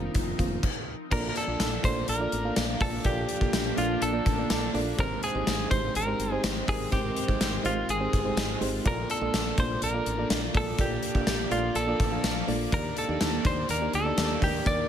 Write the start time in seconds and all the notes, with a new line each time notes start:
Already playing: D#3 F3 A#3 C4 D4 D#4 F4 A#4
0.15 F1, kick, closed hi-hat
0.38 F1 D#3 A#3 C4 F4, kick, closed hi-hat
0.63 kick, crash
1.10 A#1 A#2 F3 A#3 D4 F4 A4 A#4 D5, kick, crash
1.29 A#4
1.36 A4, closed hi-hat
1.47 A#1 A#3 D4 F4 A4 D5
1.60 A#1, snare, closed hi-hat, tambourine
1.83 A#1 A#3 D4 F4 A4 C5 D5, kick, closed hi-hat
2.08 A#1 A#2 F3 A#3 A#4, closed hi-hat
2.19 A#3 D4 F4 A4 D5
2.32 A1, closed hi-hat
2.44 A#3 D4 F4 A4 F5
2.56 A#1, snare, closed hi-hat, tambourine
2.80 A#1 F3 A#3 D4 F4 A4 D5, kick, open hi-hat
3.04 A#1 A#2 F3 A#3 D4 F4 G4 A4 D5, kick, closed hi-hat
3.29 closed hi-hat
3.40 A#1 A#3 D4 F4 A4 D5, kick
3.53 A#1, snare, closed hi-hat, tambourine
3.76 A#1 A#3 D4 F4 A4 D5, closed hi-hat
4.01 A#1 A#2 F3 A#3 A4, closed hi-hat
4.12 A#3 D4 F4 A4 D5
4.26 A1, kick, closed hi-hat
4.37 A#3 D4 F4 A4 D5
4.50 A#1, snare, closed hi-hat, tambourine
4.73 A#1 F3 A#3 D4 F4 A4 D5, open hi-hat
4.97 G#1 G#2 D#3 G#3 C4 D#4 G4 A#4 C5 G5, kick, closed hi-hat
5.23 G#4, closed hi-hat
5.34 G#1 G#3 C4 D#4 G4 C5
5.47 G#1, snare, closed hi-hat, tambourine
5.70 G#1 G#3 C4 D#4 G4 C5, kick, closed hi-hat
5.94 G#1 G#2 D#3 G#3 A#4, closed hi-hat
6.06 G#3 C4 D#4 G4 C5
6.19 G1, closed hi-hat
6.31 G#3 C4 D#4 G4 C5
6.43 G#1, snare, closed hi-hat, tambourine
6.67 G#1 D#3 G#3 C4 D#4 G4 G#4 A#4, kick, open hi-hat
6.91 G#1 G#2 D#3 G#3 C4 D#4 F4 G4 C5, kick, closed hi-hat
7.17 closed hi-hat
7.27 G#1 G#3 C4 D#4 G4 C5, kick
7.40 G#1, snare, closed hi-hat, tambourine
7.63 G#1 G#3 C4 D#4 F4 G4 C5, closed hi-hat
7.88 G#1 G#2 D#3 G#3 G#4, closed hi-hat
8.00 G#3 C4 D#4 G4 C5
8.13 G1, kick, closed hi-hat
8.24 G#3 C4 D#4 G4 C5
8.37 G#1, snare, closed hi-hat, tambourine
8.60 G#1 D#3 G#3 C4 D#4 G4 C5, open hi-hat
8.84 A#1 A#2 F3 A#3 D4 F4 A4 A#4 D5, kick, closed hi-hat
9.10 A4, closed hi-hat
9.21 A#1 A#3 D4 F4 A4 D5
9.33 A#1, snare, closed hi-hat, tambourine
9.57 A#1 A#3 D4 F4 A4 C5 D5, kick, closed hi-hat
9.82 A#1 A#2 F3 A#3 A#4, closed hi-hat
9.93 A#3 D4 F4 A4 D5
10.06 A1, closed hi-hat
10.18 A#3 D4 F4 A4 D5
10.30 A#1, snare, closed hi-hat, tambourine
10.54 A#1 F3 A#3 D4 F4 A4 D5, kick, open hi-hat
10.78 A#1 A#2 F3 A#3 D4 F4 G4 A4 D5, kick, closed hi-hat
11.03 closed hi-hat
11.14 A#1 A#3 D4 F4 A4 D5, kick
11.27 A#1, snare, closed hi-hat, tambourine
11.50 A#1 A#3 D4 F4 A4 D5, closed hi-hat
11.75 A#1 A#2 F3 A#3 A4, closed hi-hat
11.87 A#3 D4 F4 A4 D5
12.00 A1, kick, closed hi-hat
12.11 A#3 D4 F4 A4 F5
12.24 A#1, snare, closed hi-hat, tambourine
12.47 A#1 F3 A#3 D4 F4 A4 D5, open hi-hat
12.71 D#2 D#3 A#3 D4 D#4 G4 A#4 D5, kick, closed hi-hat
12.97 A4, closed hi-hat
13.08 D#2 A#3 D4 D#4 G4 D5
13.21 D#2, snare, closed hi-hat, tambourine
13.45 D#2 A#3 D4 D#4 G4 C5 D5, kick, closed hi-hat
13.69 D#2 D#3 A#3 D#4 A#4, closed hi-hat
13.81 A#3 D4 D#4 G4 D5
13.93 D2 A4, closed hi-hat
14.05 A#3 D4 D#4 G4 D5
14.17 D#2, snare, closed hi-hat, tambourine
14.41 D#2 A#3 D4 D#4 G4 A#4, kick, open hi-hat
14.65 D#2 D#3 A#3 D4 D#4 G4 D5, kick, closed hi-hat